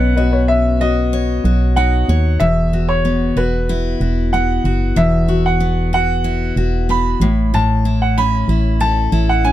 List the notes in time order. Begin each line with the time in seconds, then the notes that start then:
Already playing: B1 B3 C#4 B4 D#5 F#5
0.15 C#4 F#4 B4 D#5
0.31 C#4 B4 C#5
0.48 E5
0.81 F#4 D#5
1.13 C#5
1.44 B1 F#4
1.76 D#4 F#5
2.09 D#2 C#5
2.40 E1 E2 E5
2.73 F#4
2.89 C#5
3.05 B3
3.36 E1 F#4 B4
3.69 E4
4.01 E1 F#4
4.33 B3 F#5
4.64 F#1 F#4
4.96 E1 E2 E5
5.28 F#4
5.46 F#5
5.60 B3
5.93 F#4 F#5
6.24 E4
6.56 E1 F#4
6.89 B3 B5
7.20 A1 A2
7.54 A2 A5
7.85 E4
8.02 F#5
8.18 C#4 B5
8.48 A1 E4
8.80 A4 A5
9.12 A1 E4
9.29 F#5
9.45 C#4 G#5